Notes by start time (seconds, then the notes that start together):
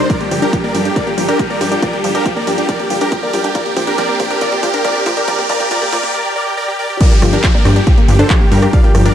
Already playing: G3 D4, riser
0.10 F3 F4 A4 A#4 D5, kick, closed hi-hat
0.21 A#3 G4, closed hi-hat
0.31 G1 F3 G4, open hi-hat
0.42 D4 G4 A#4, closed hi-hat
0.53 F3 G4, kick, closed hi-hat
0.64 A#3 A#4 D5
0.74 G2 F3 G4, open hi-hat
0.85 D4 G4, closed hi-hat
0.96 F3 A#4 D5, kick, closed hi-hat
1.07 A#3 G4, closed hi-hat
1.18 G1 F3 G4, open hi-hat
1.28 D4 G4 A#4, closed hi-hat
1.39 F3 G4, kick, closed hi-hat
1.50 A#3 A#4 D5
1.61 G2 F3 G4, open hi-hat
1.72 D4 G4, closed hi-hat
1.82 F3 A#4 D5, kick, closed hi-hat
1.93 A#3 G4, closed hi-hat
2.04 G1 F3 G4, open hi-hat
2.15 D4 G4 A#4, closed hi-hat
2.26 F3 G4, kick, closed hi-hat
2.36 A#3 A#4 D5
2.47 G2 F3 G4, open hi-hat
2.58 D4 G4, closed hi-hat
2.69 F3 A#4 D5, kick, closed hi-hat
2.80 A#3 G4, closed hi-hat
2.90 G1 F3 G4, open hi-hat
3.01 D4 G4 A#4, closed hi-hat
3.12 F3 G4, kick, closed hi-hat
3.23 A#3 A#4 D5
3.33 G2 F3 G4, open hi-hat
3.44 D4 G4, closed hi-hat
3.55 F3 A#3 C4 D4 A#4 D5, kick, closed hi-hat
3.66 A#3 G4, closed hi-hat
3.77 A#1 F3 G4, kick, open hi-hat
3.87 D4 G4 A#4, closed hi-hat
3.98 F3 A#4 D5, kick, closed hi-hat
4.09 A#3 G4
4.20 A#2 F3 G4, kick, open hi-hat
4.31 D4 G4 A#4, closed hi-hat
4.41 F3 A#4 D5, kick, closed hi-hat
4.52 A#3 G4, closed hi-hat
4.63 A#1 F3 G4, kick, open hi-hat
4.74 D4 G4 A#4, closed hi-hat
4.85 F3 A#4 D5, kick, closed hi-hat
4.95 A#3 G4
5.06 A#2 F3 G4, kick, open hi-hat
5.17 D4 G4 A#4, closed hi-hat
5.28 F3 A#4 D5, kick, closed hi-hat
5.39 A#3 G4, kick, closed hi-hat
5.49 A#1 F3 A#4 D5, kick, open hi-hat
5.60 A#3 G4, kick, closed hi-hat
5.71 F3 A#4 D5, kick, closed hi-hat
5.82 A#3 G4, kick, closed hi-hat
5.92 A#2 F3 A#4 D5, kick, open hi-hat
6.03 A#3 G4, kick, closed hi-hat
6.14 A#4 D5
6.25 G4
6.36 A#4 D5
6.46 G4
6.57 A#4 D5
6.68 G4
6.79 A#4 D5
6.90 G4
7.00 F3 G3 D4 F4 A4 A#4 D5, kick, closed hi-hat, crash, downlifter
7.11 A#3 G4, closed hi-hat
7.22 G1 F3 G4, cross-stick, open hi-hat
7.33 D4 G4 A#4, closed hi-hat
7.44 F3 G4, kick, clap, closed hi-hat
7.54 A#3 A#4 D5
7.65 G2 F3 G4, cross-stick, open hi-hat
7.76 D4 G4, closed hi-hat
7.87 F3 G4, kick, closed hi-hat
7.98 A#3, closed hi-hat
8.08 G1 F3 G4, open hi-hat
8.19 D4 A4 C5, closed hi-hat
8.30 F3 G4, kick, clap, closed hi-hat
8.41 A#3 G4
8.52 G2 D4 G4 A#4, open hi-hat
8.62 D4 G4, cross-stick, closed hi-hat
8.73 F3 D5 F5, kick, closed hi-hat
8.84 A#3 G4, closed hi-hat
8.95 G1 F3 G4, cross-stick, open hi-hat
9.06 D4 A#4 D5, closed hi-hat